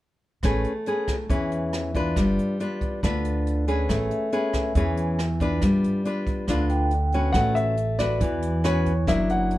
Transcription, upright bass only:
0.43 0.63 A1 medium
1.30 2.12 E2 medium
2.16 2.36 G1 medium
3.03 3.85 D2 medium
3.90 4.10 A1 medium
4.75 5.58 E2 medium
5.62 5.82 G1 medium
6.48 7.30 D2 medium
7.34 8.17 A1 medium
8.21 9.03 E2 medium
9.08 9.58 F#1 medium

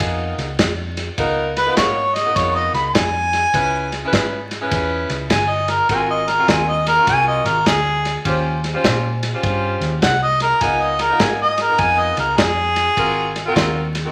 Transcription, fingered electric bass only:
0.00 0.32 F2 loud
0.38 0.55 C#2 medium
0.59 1.08 F2 medium
1.18 1.67 C#2 medium
1.77 2.26 G#2 medium
2.36 2.68 F2 loud
2.73 2.91 C#2 medium
2.95 3.44 F2 medium
3.54 4.03 C#2 medium
4.13 4.62 G#2 medium
4.72 5.03 E2 medium
5.10 5.27 C#2 medium
5.30 5.79 G1 medium
5.89 6.38 G#1 loud
6.48 6.97 D#2 loud
7.07 7.39 C2 medium
7.44 7.62 G#1 loud
7.66 8.15 D2 medium
8.25 8.74 D#2 medium
8.84 9.33 A#2 medium
9.43 9.75 G2 medium
9.80 9.98 D#2 medium
10.02 10.51 C2 medium
10.61 11.10 C#2 medium
11.20 11.69 G#2 medium
11.79 12.11 F2 loud
12.17 12.34 C#2 medium
12.38 12.87 F2 medium
12.97 13.46 G#1 medium
13.56 14.05 D#2 medium

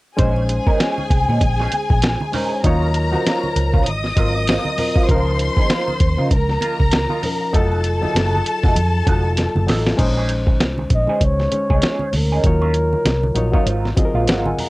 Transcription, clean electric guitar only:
0.18 0.40 C#4 medium
0.18 0.40 D#4 medium
0.18 0.41 G#4 medium
0.49 muted clean electric guitar stroke soft
0.67 0.79 C#4 soft
0.67 0.79 D#4 medium
0.67 0.80 A#4 medium
0.80 1.02 C#4 medium
0.80 1.02 D#4 medium
0.80 1.02 G#4 medium
1.10 muted clean electric guitar stroke soft
1.29 1.41 C#4 soft
1.29 1.42 D#4 soft
1.29 1.42 G#4 soft
1.42 muted clean electric guitar stroke soft
1.60 1.72 C#4 medium
1.60 1.72 D#4 medium
1.60 1.73 G#4 medium
1.73 muted clean electric guitar stroke soft
1.90 muted clean electric guitar stroke soft
2.21 muted clean electric guitar stroke soft
2.34 2.55 C#4 medium
2.34 2.51 D#4 medium
2.34 2.51 A#4 medium
2.52 muted clean electric guitar stroke soft
2.64 2.86 F#3 medium
2.64 2.86 C#4 medium
2.64 2.87 F4 medium
2.95 muted clean electric guitar stroke soft
3.13 3.24 F#3 soft
3.13 3.25 C#4 soft
3.13 3.26 F#4 medium
3.25 3.47 F#3 medium
3.25 3.47 C#4 medium
3.25 3.48 F4 medium
3.56 muted clean electric guitar stroke soft
3.74 3.86 F#3 soft
3.74 3.87 C#4 medium
3.74 3.86 F4 medium
3.87 muted clean electric guitar stroke soft
4.17 4.35 F#3 soft
4.17 4.35 C4 medium
4.17 4.34 F4 soft
4.35 muted clean electric guitar stroke soft
4.48 4.70 F#3 medium
4.48 4.70 C4 medium
4.48 4.71 F4 medium
4.79 muted clean electric guitar stroke soft
4.96 5.08 F#3 soft
4.96 5.09 C4 soft
4.96 5.08 F4 soft
5.08 5.31 A#3 medium
5.08 5.31 D#4 medium
5.08 5.31 F4 medium
5.41 muted clean electric guitar stroke soft
5.58 5.69 A#3 soft
5.58 5.70 D#4 medium
5.58 5.71 G#4 medium
5.70 5.92 A#3 medium
5.70 5.93 D#4 medium
5.70 5.93 F4 medium
6.01 muted clean electric guitar stroke soft
6.18 6.30 A#3 soft
6.18 6.30 D#4 soft
6.18 6.30 F4 soft
6.31 muted clean electric guitar stroke soft
6.61 6.80 A#3 medium
6.61 6.79 D#4 soft
6.61 6.78 F4 medium
6.79 muted clean electric guitar stroke soft
6.92 muted clean electric guitar stroke soft
7.10 7.22 A#3 medium
7.10 7.22 D#4 medium
7.10 7.23 F4 medium
7.23 muted clean electric guitar stroke soft
7.41 muted clean electric guitar stroke soft
7.54 7.76 A3 medium
7.54 7.76 D#4 medium
7.54 7.76 F#4 medium
7.85 muted clean electric guitar stroke soft
8.02 8.14 A3 soft
8.02 8.15 D#4 soft
8.02 8.16 A4 medium
8.15 8.37 A3 medium
8.15 8.38 D#4 medium
8.15 8.38 F#4 medium
8.47 muted clean electric guitar stroke soft
8.64 8.76 A3 soft
8.64 8.77 D#4 soft
8.64 8.77 F#4 soft
8.78 muted clean electric guitar stroke soft
9.08 9.26 A3 soft
9.08 9.26 D#4 medium
9.08 9.25 F#4 medium
9.26 muted clean electric guitar stroke soft
9.56 muted clean electric guitar stroke soft
9.69 9.91 A3 medium
9.69 9.87 D#4 medium
9.69 9.87 A4 medium
9.87 muted clean electric guitar stroke soft
10.01 muted clean electric guitar stroke soft
10.17 10.29 C#4 soft
10.17 10.30 D#4 soft
10.17 10.30 G#4 medium
10.30 muted clean electric guitar stroke soft
10.48 muted clean electric guitar stroke soft
10.61 muted clean electric guitar stroke soft
10.79 muted clean electric guitar stroke soft
11.09 11.21 C#4 medium
11.09 11.21 D#4 medium
11.09 11.22 G#4 medium
11.23 muted clean electric guitar stroke soft
11.40 muted clean electric guitar stroke soft
11.70 11.82 C#4 medium
11.70 11.83 D#4 medium
11.70 11.83 G#4 medium
11.83 12.05 C#4 medium
11.83 12.05 D#4 medium
11.83 12.06 G#4 medium
12.14 muted clean electric guitar stroke soft
12.32 12.43 C#4 soft
12.32 12.44 D#4 soft
12.32 12.45 G#4 medium
12.61 12.73 F#3 medium
12.61 12.74 C#4 medium
12.61 12.74 F4 medium
12.74 muted clean electric guitar stroke soft
12.93 muted clean electric guitar stroke soft
13.06 muted clean electric guitar stroke soft
13.23 muted clean electric guitar stroke soft
13.54 13.65 F#3 medium
13.54 13.67 C#4 medium
13.54 13.66 F4 medium
13.66 13.88 F#3 medium
13.66 13.89 C4 medium
13.66 13.89 F4 medium
13.97 muted clean electric guitar stroke soft
14.15 14.26 F#3 soft
14.15 14.26 C4 soft
14.15 14.27 F4 medium
14.27 14.50 F#3 medium
14.27 14.50 C4 medium
14.27 14.50 F4 medium
14.59 muted clean electric guitar stroke soft

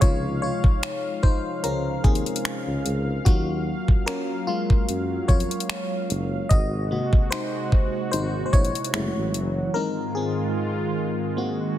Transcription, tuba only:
0.02 0.49 C#2 loud
0.64 0.71 C#2 soft
1.64 1.95 C#2 medium
2.04 2.21 D#2 medium
2.67 2.81 C#2 medium
2.86 3.17 C#2 medium
3.26 3.74 D#2 loud
3.88 3.96 F#2 soft
4.88 5.19 F#2 medium
5.29 5.45 F2 medium
6.10 6.41 F#1 medium
6.51 6.98 G#1 loud
7.13 7.20 G#1 soft
8.13 8.44 G#1 loud
8.53 8.70 A#1 medium
8.94 9.10 F#1 medium
9.16 9.36 A1 medium
9.34 9.65 F#1 medium

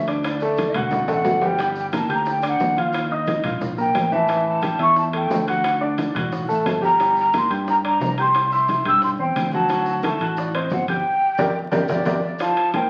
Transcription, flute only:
0.25 0.78 D5 medium
0.77 1.10 F#5 medium
1.12 1.48 F#5 medium
1.47 1.62 G5 medium
1.63 1.69 G5 medium
1.80 1.86 G5 medium
1.96 2.11 A5 medium
2.14 2.28 A#5 medium
2.31 2.45 G5 medium
2.48 2.83 F#5 medium
2.81 3.16 F5 medium
3.14 3.64 D#5 medium
3.80 4.11 G5 medium
4.14 4.45 A5 medium
4.49 4.79 A5 medium
4.82 4.97 C#6 medium
4.98 5.04 A5 loud
5.16 5.46 G5 medium
5.48 5.84 F#5 medium
5.83 6.23 D5 medium
6.52 6.66 A5 medium
6.69 6.75 A5 medium
6.85 7.15 A#5 loud
7.19 7.34 A#5 medium
7.37 7.51 C6 medium
7.70 7.76 A#5 loud
7.87 8.17 A#5 loud
8.21 8.51 C6 loud
8.53 8.84 C6 loud
8.88 9.02 E6 loud
9.04 9.10 C6 loud
9.20 9.51 G5 loud
9.54 9.85 A5 loud
9.89 9.95 A5 medium
10.05 10.36 A5 medium
10.38 10.57 D5 medium
10.56 10.72 D#5 medium
10.73 10.88 F#5 medium
10.88 11.58 G5 loud
11.90 12.23 D5 medium
12.23 12.39 D5 medium
12.42 12.77 A5 loud
12.76 12.90 G5 loud

